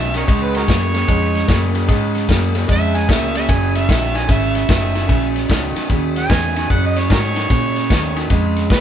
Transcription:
Already playing: B1 F#2 D#3 E5
0.14 F#2 D#3 F#4 A#4 C#5, snare, ride
0.28 C#2 C#3 G#3, kick, ride
0.44 B4
0.54 F#4 A#4 C#5, snare, ride
0.67 F#2 C#3 A#3, kick, snare, ride
0.94 C#3 A#3, snare, ride
1.08 F2 C#3 G#3, kick, ride
1.35 snare, ride
1.48 F#2 C#3 A#3, kick, snare, ride
1.74 C#3 A#3, snare, ride
1.88 G#2 C#3 G#3, kick, snare, ride
2.15 snare, ride
2.28 F#2 C#3 A#3, kick, snare, ride
2.55 C#3 A#3, snare, ride
2.68 F2 C#3 G#3, kick, snare, ride
2.72 E5
2.95 G#5, snare, ride
3.08 C#2 C#3 A#3 E5, kick, snare, ride
3.35 C#3 A#3 E5, snare, ride
3.49 F#1 F#2 C#3 G#5, kick, snare, ride
3.75 E5, snare, ride
3.88 A#1 F#2 D#3 E5, kick, snare, ride
4.14 F#2 D#3 G#5, snare, ride
4.29 G#1 F#2 C#3 E5, kick, snare, ride
4.55 E5, snare, ride
4.68 F#1 F#2 D#3, kick, snare, ride
4.94 F#2 D#3, snare, ride
5.08 A#1 F#2 C#3, kick, snare, ride
5.36 snare, ride
5.49 C#2 F#2 D#3, kick, snare, ride
5.75 F#2 D#3, muted fingered electric bass stroke, snare, ride
5.89 D#2 F#2 C#3, kick, snare, ride
6.16 G#5, snare, ride
6.29 E2 F#2 D#3, kick, snare, ride
6.56 F#2 D#3, snare, ride
6.70 F#2 C#3 F#5, kick, ride
6.86 D#5
6.96 C#5, snare, ride
7.10 F#2 G#2 D#3 F#4 A#4 C#5, kick, snare, ride
7.36 F#2 D#3, snare, ride
7.50 F#2 A#2 C#3, kick, snare, ride
7.76 snare, ride
7.90 D#2 F#2 D#3, kick, snare, ride
8.16 F#2 D#3, snare, ride
8.30 F2 C#3 G#3, kick, snare, ride
8.56 snare, ride
8.70 C#2 C#3 A#3 B4, kick, snare, ride

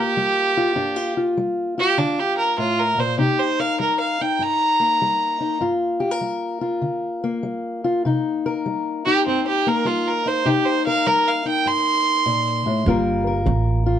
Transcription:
Already playing: D3 A#3 F4 G4 A#4
0.17 G3
0.57 F4
0.76 G2 D4
0.96 F4
1.17 F4
1.37 G3
1.78 F4 G4
1.98 D3 D4
2.20 G4
2.38 A#4
2.58 A2 F4
2.79 A#4
2.98 A#2 C5
3.18 C3 D#4 G4
3.39 C5
3.60 A#4 F5
3.80 G3 A#4
4.00 F5
4.21 D#4 G5
4.39 G2 A#5
4.80 A#3
5.02 G3
5.40 D#4
5.61 G2 F4
6.00 G4
6.11 A#4
6.21 G3
6.61 F4
6.82 D3
7.24 A#3
7.43 G3
7.84 F4
8.05 C3 D#4
8.46 A#4
8.66 G3
9.06 D#4 G4
9.27 G2 C4
9.47 G4
9.67 A#3 A#4
9.85 G3 F4
10.08 A#4
10.26 D#4 C5
10.45 C3 D#4 G4
10.66 C5
10.87 A#4 F5
11.07 G3 A#4
11.28 F5
11.45 D#4 G5
11.66 G2 C6
12.26 A#2
12.66 A2
12.86 G1 G2 G3 A#3 F4 A#4
13.27 A#4
13.46 A1 G3
13.86 F4

